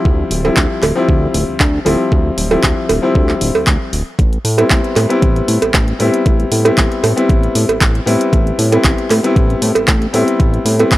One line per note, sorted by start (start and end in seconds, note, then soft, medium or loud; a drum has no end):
0.00 0.41 F3 medium
0.00 0.42 G3 medium
0.00 0.42 C4 medium
0.00 0.42 E4 loud
0.05 0.25 D2 loud
0.05 kick loud
0.31 0.50 D1 medium
0.31 open hi-hat medium
0.44 0.93 F3 medium
0.44 0.93 G3 medium
0.44 0.94 C4 medium
0.44 0.94 E4 medium
0.44 cowbell medium
0.56 0.67 D2 medium
0.56 kick medium
0.56 clap loud
0.82 0.93 D1 medium
0.82 clap soft
0.82 open hi-hat medium
0.82 cowbell medium
0.95 1.83 F3 medium
0.95 1.83 G3 medium
0.95 1.84 C4 medium
0.95 1.84 E4 loud
1.09 1.28 D2 medium
1.09 kick loud
1.34 1.45 D1 loud
1.34 open hi-hat medium
1.48 1.58 D2 soft
1.60 1.80 D2 medium
1.60 kick loud
1.60 clap loud
1.85 1.96 D1 medium
1.85 2.48 F3 medium
1.85 2.48 G3 medium
1.85 2.49 C4 medium
1.85 2.49 E4 medium
1.85 open hi-hat medium
1.85 cowbell medium
2.12 2.31 D2 loud
2.12 kick loud
2.38 2.57 D1 loud
2.38 open hi-hat loud
2.51 3.00 F3 medium
2.51 3.00 G3 medium
2.51 3.00 C4 medium
2.51 3.00 E4 medium
2.51 cowbell medium
2.63 2.74 D2 medium
2.63 kick loud
2.63 clap loud
2.89 3.00 D1 medium
2.89 open hi-hat medium
2.89 cowbell medium
3.02 3.90 F3 medium
3.02 3.90 G3 medium
3.02 3.90 C4 medium
3.02 3.91 E4 loud
3.15 3.35 D2 medium
3.15 kick loud
3.29 clap soft
3.41 3.51 D1 medium
3.41 open hi-hat medium
3.55 3.65 D2 soft
3.55 cowbell medium
3.67 3.77 D2 medium
3.67 kick loud
3.67 clap loud
3.93 4.03 D1 medium
3.93 open hi-hat medium
4.19 4.38 A1 loud
4.19 kick loud
4.19 closed hi-hat medium
4.33 closed hi-hat soft
4.45 4.64 A2 loud
4.45 open hi-hat loud
4.57 5.07 G3 medium
4.57 5.07 B3 medium
4.57 5.07 C4 medium
4.57 5.07 E4 medium
4.57 closed hi-hat medium
4.57 cowbell medium
4.70 4.81 A1 medium
4.70 kick loud
4.70 clap loud
4.70 closed hi-hat medium
4.84 closed hi-hat soft
4.96 5.07 A2 medium
4.96 clap soft
4.96 open hi-hat medium
4.96 cowbell medium
5.09 5.96 G3 medium
5.09 5.97 B3 medium
5.09 5.97 C4 medium
5.09 5.97 E4 loud
5.09 closed hi-hat medium
5.22 5.42 A1 medium
5.22 kick loud
5.22 closed hi-hat medium
5.36 closed hi-hat soft
5.48 5.58 A2 medium
5.48 open hi-hat loud
5.62 5.72 A1 soft
5.62 closed hi-hat medium
5.62 cowbell medium
5.74 5.93 A1 medium
5.74 kick loud
5.74 clap loud
5.74 closed hi-hat medium
5.88 closed hi-hat soft
5.99 6.10 A2 medium
5.99 6.62 G3 medium
5.99 6.62 B3 medium
5.99 6.62 C4 medium
5.99 6.63 E4 medium
5.99 open hi-hat medium
6.14 closed hi-hat medium
6.26 6.45 A1 loud
6.26 kick loud
6.26 closed hi-hat soft
6.40 closed hi-hat soft
6.52 6.71 A2 loud
6.52 open hi-hat loud
6.65 7.14 G3 medium
6.65 7.14 B3 medium
6.65 7.14 C4 medium
6.65 7.14 E4 medium
6.65 closed hi-hat medium
6.65 cowbell loud
6.78 6.88 A1 medium
6.78 kick loud
6.78 clap loud
6.78 closed hi-hat medium
6.92 closed hi-hat soft
7.04 7.14 A2 medium
7.04 open hi-hat medium
7.04 cowbell medium
7.16 8.03 G3 medium
7.16 8.04 B3 medium
7.16 8.04 C4 medium
7.16 8.04 E4 loud
7.16 closed hi-hat medium
7.29 7.49 A1 medium
7.29 kick loud
7.29 closed hi-hat medium
7.43 closed hi-hat soft
7.55 7.65 A2 loud
7.55 open hi-hat loud
7.69 7.79 A1 soft
7.69 closed hi-hat soft
7.69 cowbell medium
7.81 8.00 A1 medium
7.81 kick loud
7.81 clap loud
7.81 closed hi-hat medium
7.95 closed hi-hat soft
8.06 8.17 A2 medium
8.06 8.69 G3 medium
8.06 8.69 B3 medium
8.06 8.69 C4 medium
8.06 8.70 E4 loud
8.06 open hi-hat medium
8.21 closed hi-hat medium
8.33 8.52 A1 loud
8.33 kick loud
8.33 closed hi-hat soft
8.47 closed hi-hat soft
8.59 8.78 A2 loud
8.59 open hi-hat loud
8.72 9.21 G3 medium
8.72 9.21 B3 medium
8.72 9.21 C4 medium
8.72 9.21 E4 medium
8.72 closed hi-hat soft
8.72 cowbell medium
8.84 8.95 A1 medium
8.84 kick loud
8.84 clap loud
8.84 closed hi-hat soft
8.98 closed hi-hat soft
9.10 9.21 A2 medium
9.10 clap soft
9.10 open hi-hat medium
9.10 cowbell medium
9.23 10.11 G3 medium
9.23 10.11 B3 medium
9.23 10.11 C4 medium
9.23 10.12 E4 loud
9.23 closed hi-hat soft
9.36 9.56 A1 medium
9.36 kick loud
9.36 closed hi-hat soft
9.50 closed hi-hat soft
9.62 9.72 A2 loud
9.62 open hi-hat loud
9.75 9.86 A1 soft
9.75 closed hi-hat soft
9.75 cowbell medium
9.88 10.07 A1 medium
9.88 kick loud
9.88 clap loud
9.88 closed hi-hat soft
10.02 closed hi-hat soft
10.13 10.24 A2 medium
10.13 10.76 G3 medium
10.13 10.76 B3 medium
10.13 10.76 C4 medium
10.13 10.77 E4 loud
10.13 open hi-hat medium
10.28 closed hi-hat soft
10.40 10.59 A1 medium
10.40 kick loud
10.40 closed hi-hat soft
10.54 closed hi-hat soft
10.65 10.85 A2 loud
10.65 open hi-hat loud
10.79 10.98 G3 medium
10.79 10.98 B3 medium
10.79 10.98 C4 medium
10.79 10.98 E4 medium
10.79 closed hi-hat soft
10.79 cowbell medium
10.92 10.98 A1 medium
10.92 kick loud
10.92 clap loud
10.92 closed hi-hat soft